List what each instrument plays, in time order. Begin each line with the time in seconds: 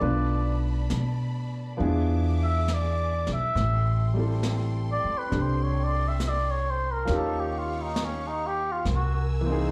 Already playing: muted trumpet D5, string section A5
0.00 upright bass B1, grand piano A3 B3 D4 F4 B4, string section D5 B5, brush sweep
0.90 upright bass B2, snare, hi-hat pedal
1.77 upright bass E2, grand piano F3 B3 D4 E4, string section G#4 E5 D6, brush sweep
1.82 grand piano G#4
2.44 muted trumpet E5
2.68 snare, hi-hat pedal
2.73 muted trumpet D5
3.27 upright bass B1, snare
3.33 muted trumpet E5
3.54 upright bass A1, string section A4 G5 C6, brush sweep, snare
4.14 grand piano G3 A3 C4
4.18 grand piano E4 A4
4.43 snare, hi-hat pedal
4.92 muted trumpet D5
5.05 muted upright bass stroke
5.18 muted trumpet B4
5.29 upright bass C2, grand piano C4 D4 G4 A4, brush sweep, snare
5.41 muted trumpet C5
5.63 muted trumpet C#5
5.84 muted trumpet D5
6.08 muted trumpet E5
6.20 snare, hi-hat pedal
6.28 muted trumpet D5
6.51 muted trumpet C#5
6.70 muted trumpet C5
6.93 muted trumpet A#4
7.05 upright bass D#2, grand piano F3 A#3 C#4 D#4, string section G4 F5 C#6, brush sweep, snare
7.10 grand piano G4
7.15 muted trumpet A4
7.40 muted trumpet G4
7.59 muted trumpet F4
7.82 muted trumpet D#4
7.96 snare, hi-hat pedal
8.04 muted trumpet C#4
8.27 muted trumpet D#4
8.47 muted trumpet G4
8.72 muted trumpet F4
8.85 upright bass C2, string section A#4 G#5 E6, brush sweep, snare
8.95 muted trumpet F#4
9.41 grand piano E3 A#3
9.46 grand piano C4 D#4
9.52 grand piano G#4